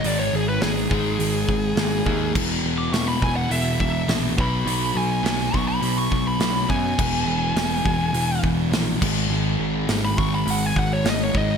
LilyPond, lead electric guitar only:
\new Staff \with { instrumentName = "Lead electric guitar" } { \time 4/4 \key gis \minor \tempo 4 = 104 d''16 cis''16 gis'16 b'16 gis'2. | r8. d'''16 cis'''16 b''16 gis''16 fis''16 e''8 e''8 r8 b''8~ | b''8 gis''4 cis'''16 b''8 cis'''8 b''8. gis''8~ | gis''2~ gis''8 r4. |
r4 r16 b''16 cis'''16 b''16 fis''16 gis''16 fis''16 cis''16 dis''16 cis''16 dis''8 | }